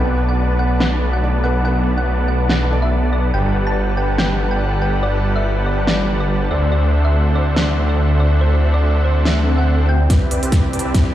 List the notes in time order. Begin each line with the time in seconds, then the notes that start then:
Already playing: B1 B2 A3 B3 D4 B4 D5 F#5 A5
0.29 F#5
0.59 F#5
0.80 F#5, snare
1.13 F#5
1.22 B2 A3 D4 D5
1.43 B2 A3 D4 B4 F#5
1.63 B2 A3 D4 F#5
1.67 B4
1.98 F#5
2.28 F#5
2.49 F#5, snare
2.68 B2 A3 D4
2.72 D5
2.82 E5
3.13 D5
3.34 G1 G3 D4 F#4 G4 A4 B4 F#5 G5 A5
3.46 G4
3.55 B4
3.67 D5 A5
3.76 F#4
3.88 G4
3.97 B4 G5
4.09 D5
4.18 F#4 G5, snare
4.30 G4
4.40 B4
4.51 D5 G5
4.61 F#4
4.72 G4
4.82 B4 G5
4.94 D5
5.03 F#4 D5
5.15 G4
5.24 B4
5.36 D5 E5
5.45 F#4
5.57 G4
5.66 B4 D5
5.78 D5
5.87 F#4 D5, snare
5.99 G4
6.09 B4
6.20 D5
6.30 F#4
6.41 G4
6.51 D2 D3 A3 C4 D4 E4 F#4 A4 C5 D5 E5 F#5
6.63 D5
6.72 F#4 D5
6.84 A4
6.93 C5
7.05 D5 E5
7.14 F#4
7.26 A4
7.35 C5 D5
7.47 D5
7.56 F#4 D5, snare
7.68 A4
7.78 C5
7.89 D5
7.99 F#4
8.10 A4
8.20 C5 D5
8.32 D5
8.41 F#4 C5
8.53 A4
8.62 C5
8.74 D5
8.83 F#4
8.95 A4
9.04 C5
9.16 D5
9.25 F#4 E5, snare, swell
9.37 A4
9.47 F#4
9.58 C5 F#5
9.68 F#5
9.79 F#4
9.89 F#4 G5
10.01 D5
10.08 C2 C3 G3 C4 D4 E4 G4 B4 D5 E5, kick, snare, closed hi-hat, riser
10.22 G4
10.31 C2 C4 G4 B4 D5 E5, closed hi-hat
10.43 C2 C4 G4 B4 C5 D5 E5, closed hi-hat
10.52 C2 C4 E4 G4 B4 D5 E5, kick, snare, closed hi-hat
10.64 G4
10.73 C2 C4 G4 B4 D5 A5, closed hi-hat
10.79 closed hi-hat
10.85 C2 C4 G4 B4 C5 D5 E5
10.94 C2 C4 E4 G4 B4 D5 E5, kick, snare, closed hi-hat
11.06 G4